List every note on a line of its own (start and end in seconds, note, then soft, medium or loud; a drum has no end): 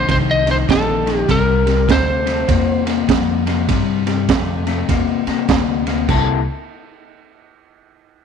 0.00 0.10 C5 medium
0.09 0.67 C2 medium
0.09 0.43 F2 medium
0.09 0.43 D#3 loud
0.09 0.16 C5 loud
0.09 kick medium
0.09 snare soft
0.09 ride medium
0.31 0.50 D#5 medium
0.46 0.66 F2 medium
0.46 0.67 D#3 medium
0.46 snare soft
0.46 ride medium
0.51 0.56 C5 medium
0.67 1.27 A#1 medium
0.67 1.02 F2 medium
0.67 1.03 D#3 medium
0.67 kick medium
0.67 snare loud
0.67 ride medium
0.72 1.18 A4 medium
1.06 1.26 F2 medium
1.06 1.27 D#3 medium
1.06 snare soft
1.06 ride medium
1.18 1.31 G4 medium
1.28 1.87 C2 medium
1.28 1.63 C3 medium
1.28 1.63 G3 medium
1.28 1.92 A#4 medium
1.28 kick medium
1.28 snare soft
1.28 ride medium
1.66 1.86 C3 medium
1.66 1.86 G3 medium
1.66 snare soft
1.66 ride medium
1.88 2.47 D2 medium
1.88 2.22 C3 medium
1.88 2.23 A3 medium
1.88 2.84 C5 medium
1.88 kick medium
1.88 snare loud
1.88 ride medium
2.26 2.46 C3 medium
2.26 2.47 A3 medium
2.26 snare soft
2.26 ride medium
2.48 3.07 E2 medium
2.48 2.82 C3 medium
2.48 2.82 A#3 medium
2.48 kick medium
2.48 snare soft
2.48 ride medium
2.86 3.06 C3 medium
2.86 3.07 A#3 medium
2.86 snare soft
2.86 ride medium
3.08 3.67 F2 medium
3.08 3.42 C3 medium
3.08 3.43 A#3 loud
3.08 kick medium
3.08 snare loud
3.08 ride medium
3.46 3.66 C3 medium
3.46 3.67 A#3 medium
3.46 snare soft
3.46 ride medium
3.69 4.27 G2 medium
3.69 4.03 C3 medium
3.69 4.03 G3 medium
3.69 kick medium
3.69 snare soft
3.69 ride medium
4.07 4.27 C3 medium
4.07 4.27 G3 medium
4.07 snare soft
4.07 ride medium
4.29 4.87 F2 medium
4.29 4.63 C3 medium
4.29 4.63 A3 medium
4.29 kick medium
4.29 snare loud
4.29 ride medium
4.67 4.87 C3 medium
4.67 4.87 A3 medium
4.67 snare soft
4.67 ride medium
4.89 5.24 E2 medium
4.89 5.23 C3 medium
4.89 5.23 A#3 medium
4.89 kick medium
4.89 snare soft
4.89 ride medium
5.26 5.47 C3 medium
5.26 5.47 A#3 medium
5.26 muted upright bass stroke soft
5.26 snare soft
5.26 ride medium
5.49 6.07 D2 medium
5.49 5.83 C3 medium
5.49 5.83 A#3 medium
5.49 kick medium
5.49 snare loud
5.49 ride medium
5.87 6.07 C3 medium
5.87 6.07 A#3 medium
5.87 snare soft
5.87 ride medium
6.08 6.44 C2 medium
6.08 6.39 C3 loud
6.08 6.39 A#3 loud
6.08 6.40 E4 loud
6.08 6.40 A4 loud
6.08 kick loud
6.08 crash medium